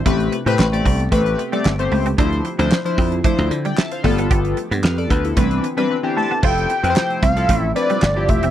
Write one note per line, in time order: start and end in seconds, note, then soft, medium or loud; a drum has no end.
0.00 2.14 C3 medium
0.05 0.28 A1 loud
0.05 2.16 A3 medium
0.05 0.14 A3 medium
0.05 0.35 A3 medium
0.05 2.16 B3 medium
0.05 0.36 C4 medium
0.05 2.16 G4 medium
0.05 0.36 G4 medium
0.05 0.36 B4 loud
0.05 kick loud
0.05 closed hi-hat medium
0.20 closed hi-hat soft
0.32 muted clean electric guitar stroke soft
0.32 closed hi-hat medium
0.46 0.57 A2 medium
0.46 0.66 A3 medium
0.46 0.54 C4 medium
0.46 0.66 C4 medium
0.46 0.66 G4 medium
0.46 0.66 B4 loud
0.46 closed hi-hat medium
0.59 0.81 A1 medium
0.59 snare loud
0.59 clap loud
0.72 1.02 A3 medium
0.72 1.02 C4 medium
0.72 1.02 G4 medium
0.72 1.02 D5 loud
0.72 closed hi-hat medium
0.85 1.07 C2 medium
0.85 0.94 C4 medium
0.85 kick medium
0.85 open hi-hat medium
1.00 closed hi-hat medium
1.11 1.34 A1 medium
1.11 1.41 A3 medium
1.11 1.20 A3 medium
1.11 1.42 C4 medium
1.11 1.42 G4 medium
1.11 1.42 B4 loud
1.11 kick loud
1.11 closed hi-hat loud
1.26 closed hi-hat soft
1.38 muted clean electric guitar stroke soft
1.38 closed hi-hat medium
1.52 1.60 G3 medium
1.52 1.72 A3 loud
1.52 1.72 C4 medium
1.52 1.72 G4 medium
1.52 1.72 D5 loud
1.52 closed hi-hat soft
1.65 1.87 G1 medium
1.65 muted clean electric guitar stroke soft
1.65 snare loud
1.65 clap medium
1.79 2.08 A3 medium
1.79 2.09 C4 medium
1.79 2.09 G4 medium
1.79 2.09 C5 medium
1.79 closed hi-hat medium
1.92 2.14 C#2 loud
1.92 2.00 A3 medium
1.92 open hi-hat medium
2.06 2.13 C4 medium
2.06 closed hi-hat medium
2.18 2.40 D2 loud
2.18 4.02 D3 medium
2.18 2.48 F3 medium
2.18 5.34 F3 medium
2.18 4.02 C4 medium
2.18 2.26 D4 medium
2.18 2.48 D4 medium
2.18 4.02 E4 medium
2.18 2.48 E4 medium
2.18 2.48 C5 loud
2.18 kick loud
2.18 closed hi-hat medium
2.33 closed hi-hat soft
2.45 muted clean electric guitar stroke soft
2.45 closed hi-hat medium
2.58 2.69 D2 medium
2.58 2.78 F3 medium
2.58 2.66 C4 medium
2.58 2.78 D4 medium
2.58 2.78 E4 medium
2.58 2.78 C5 loud
2.58 closed hi-hat medium
2.72 snare loud
2.72 clap medium
2.85 3.14 F3 medium
2.85 3.15 D4 medium
2.85 3.15 E4 medium
2.85 3.15 C5 medium
2.85 closed hi-hat medium
2.98 3.20 F2 loud
2.98 3.06 C4 medium
2.98 kick loud
2.98 open hi-hat medium
3.12 closed hi-hat soft
3.24 3.54 F3 medium
3.24 3.33 A3 medium
3.24 3.54 D4 medium
3.24 3.54 E4 medium
3.24 3.51 C5 loud
3.24 kick loud
3.24 closed hi-hat medium
3.38 3.49 D2 loud
3.38 closed hi-hat soft
3.51 3.73 D3 medium
3.51 muted clean electric guitar stroke soft
3.51 closed hi-hat medium
3.65 3.72 G3 medium
3.65 3.77 D5 medium
3.65 3.77 G5 medium
3.65 closed hi-hat medium
3.78 3.91 E5 medium
3.78 3.91 A5 medium
3.78 muted clean electric guitar stroke soft
3.78 snare loud
3.78 clap medium
3.91 4.17 C5 medium
3.91 4.17 F5 medium
3.91 closed hi-hat medium
4.03 4.26 G1 medium
4.03 4.57 G3 medium
4.03 4.12 A3 medium
4.03 5.36 A3 medium
4.03 4.57 B3 medium
4.03 6.41 B3 medium
4.03 4.57 F4 medium
4.03 5.36 G4 medium
4.03 4.57 A4 loud
4.03 kick medium
4.03 open hi-hat medium
4.18 4.26 B3 medium
4.18 closed hi-hat medium
4.31 4.53 G1 loud
4.31 4.39 G4 medium
4.31 kick loud
4.31 closed hi-hat medium
4.45 closed hi-hat soft
4.57 muted clean electric guitar stroke soft
4.57 closed hi-hat medium
4.71 4.82 G2 loud
4.71 4.79 B3 medium
4.71 closed hi-hat medium
4.84 5.06 F2 medium
4.84 4.98 B4 soft
4.84 4.97 F5 medium
4.84 snare loud
4.84 clap medium
4.98 5.10 A4 medium
4.98 5.10 D5 medium
4.98 closed hi-hat medium
5.10 5.32 D2 loud
5.10 5.19 B3 medium
5.10 5.24 F4 medium
5.10 5.24 B4 medium
5.10 kick medium
5.10 closed hi-hat medium
5.24 5.50 E4 medium
5.24 5.50 A4 medium
5.24 closed hi-hat soft
5.37 5.59 C2 loud
5.37 6.42 D3 medium
5.37 5.66 E3 loud
5.37 5.45 A3 medium
5.37 5.67 C4 medium
5.37 6.42 C4 medium
5.37 5.67 D4 medium
5.37 6.42 E4 medium
5.37 5.67 B4 loud
5.37 kick loud
5.37 closed hi-hat medium
5.51 closed hi-hat soft
5.64 muted clean electric guitar stroke soft
5.64 closed hi-hat medium
5.77 5.96 E3 medium
5.77 5.85 G3 medium
5.77 5.97 C4 medium
5.77 5.97 D4 medium
5.77 5.97 B4 loud
5.77 closed hi-hat medium
5.90 muted clean electric guitar stroke soft
6.03 6.33 E3 medium
6.03 6.33 C4 medium
6.03 6.33 D4 medium
6.03 6.33 G4 medium
6.17 6.25 A3 medium
6.17 6.41 A5 loud
6.31 6.38 B3 medium
6.42 6.65 F1 loud
6.42 8.51 C3 medium
6.42 6.72 F3 medium
6.42 8.51 F3 medium
6.42 8.51 A3 medium
6.42 6.72 C4 medium
6.42 8.51 C4 medium
6.42 6.73 E4 medium
6.42 6.52 F4 medium
6.42 6.73 A4 medium
6.42 7.19 G5 loud
6.42 kick loud
6.42 crash loud
6.58 closed hi-hat soft
6.70 muted clean electric guitar stroke soft
6.70 closed hi-hat medium
6.83 6.94 F2 loud
6.83 7.22 F3 medium
6.83 7.22 C4 medium
6.83 6.91 C4 medium
6.83 7.22 E4 medium
6.83 6.90 B4 medium
6.83 closed hi-hat medium
6.90 7.25 C5 medium
6.96 snare loud
6.96 clap medium
7.10 closed hi-hat soft
7.22 7.45 C2 medium
7.22 7.31 C4 medium
7.22 7.58 F5 loud
7.22 kick loud
7.22 closed hi-hat medium
7.36 7.66 F3 medium
7.36 7.66 C4 medium
7.36 7.66 E4 medium
7.36 7.66 A4 medium
7.36 closed hi-hat medium
7.49 7.71 A1 medium
7.49 7.58 A3 medium
7.49 kick loud
7.49 closed hi-hat loud
7.58 7.72 E5 loud
7.75 8.05 F3 medium
7.75 8.05 C4 medium
7.75 8.05 E4 medium
7.75 8.05 B4 medium
7.75 8.30 D5 loud
7.75 muted clean electric guitar stroke soft
7.75 closed hi-hat medium
7.90 7.97 G3 medium
7.90 closed hi-hat medium
8.02 8.29 G1 medium
8.02 muted clean electric guitar stroke soft
8.02 snare loud
8.02 clap medium
8.16 8.45 F3 medium
8.16 8.46 C4 medium
8.16 8.46 E4 medium
8.16 8.46 G4 medium
8.29 8.51 E1 medium
8.29 8.37 A3 medium
8.29 8.51 E5 loud
8.29 kick medium
8.29 closed hi-hat medium
8.43 8.50 C4 medium
8.43 closed hi-hat medium